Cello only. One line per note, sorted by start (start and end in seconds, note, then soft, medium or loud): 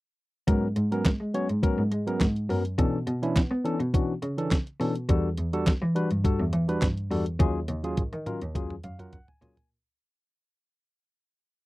0.48 0.72 G#2 loud
0.76 1.00 G#2 loud
1.05 1.17 G#3 soft
1.21 1.32 G#3 medium
1.49 1.61 G#2 medium
1.78 1.90 G#2 medium
1.92 2.20 G#3 loud
2.21 2.45 G#2 medium
2.49 2.74 F#2 medium
2.78 3.02 B2 loud
3.07 3.31 B2 loud
3.36 3.47 B3 soft
3.51 3.63 B3 loud
3.80 3.92 B2 medium
4.23 4.47 C#3 medium
4.80 5.04 B2 medium
5.09 5.33 E2 loud
5.38 5.62 E2 medium
5.67 5.78 E3 soft
5.82 5.93 E3 loud
6.11 6.22 G2 medium
6.40 6.51 E2 medium
6.53 6.77 E3 loud
6.82 7.06 G2 medium
7.11 7.35 E2 medium
7.40 7.64 D#2 loud
7.69 7.93 D#2 medium
7.97 8.09 D#3 soft
8.13 8.24 D#3 medium
8.42 8.53 D#2 medium
8.84 9.08 F#2 medium
9.42 9.66 A#2 medium